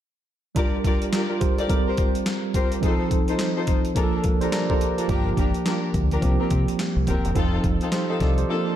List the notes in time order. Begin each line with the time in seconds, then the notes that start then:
0.55 G3 D4 F4 G4 A#4 D5, kick, closed hi-hat
0.84 F4 G4 A#4 D5, kick, closed hi-hat
1.02 closed hi-hat
1.13 F4 G4 A#4 D5, snare, clap, closed hi-hat
1.30 F4 A#4
1.40 G4 C5, kick, closed hi-hat
1.58 F4 G4 A4 A#4 D5, closed hi-hat
1.68 G3 C4 D#4 A#4, kick, closed hi-hat
1.76 F4
1.86 F4 G4 A#4 C5
1.97 kick, closed hi-hat
2.15 closed hi-hat
2.26 snare, clap, closed hi-hat
2.54 F4 G4 A#4 C5, kick, closed hi-hat
2.72 closed hi-hat
2.81 F3 C4 D#4 F4 G#4 A4 C5, kick, closed hi-hat
2.90 A4
3.11 kick, closed hi-hat
3.28 D#4 F4 A4 C5, closed hi-hat
3.39 snare, clap, closed hi-hat
3.56 D#4 F4 A4 C5
3.67 kick, closed hi-hat
3.85 closed hi-hat
3.94 F3 A#3 D4 F4 G#4 A4 A#4, kick, closed hi-hat
4.03 A4
4.24 F4 A#4, kick, closed hi-hat
4.41 D4 F4 G4 A4 A#4 C5, closed hi-hat
4.52 A4 D5 A#5, snare, clap, closed hi-hat
4.69 D4 F4 G4 A4 A#4 C5, kick
4.81 closed hi-hat
4.97 D4 F4 A4 A#4, closed hi-hat
5.08 G1 F3 A#3 D4 F4 G4 A#4, kick, closed hi-hat
5.37 G1 D4 F4 G4 A#4, kick, closed hi-hat
5.54 closed hi-hat
5.65 D4 F4 G4 A#4, snare, clap, closed hi-hat
5.94 D2, kick, closed hi-hat
6.11 D4 F4 G4 A#4, closed hi-hat
6.21 C2 F3 A#3 C4 G4, kick, closed hi-hat
6.39 C4 F4 G4 A#4
6.50 C3, kick, closed hi-hat
6.68 closed hi-hat
6.79 snare, clap, closed hi-hat
6.96 C2
7.07 D#1 C4 F4 G4 A#4, kick, closed hi-hat
7.25 E1, closed hi-hat
7.34 F1 F3 C4 D#4 F4 A4, kick, closed hi-hat
7.64 F1, kick, closed hi-hat
7.81 C4 D#4 F4 A4, closed hi-hat
7.92 G4 C5, snare, clap, closed hi-hat
8.09 C4 D#4 F4 A4 D#5
8.20 C2 A4 D5, kick, snare, closed hi-hat
8.38 G4 C5, closed hi-hat
8.48 F3 A#3 C4 D4 F4 A4
8.56 D4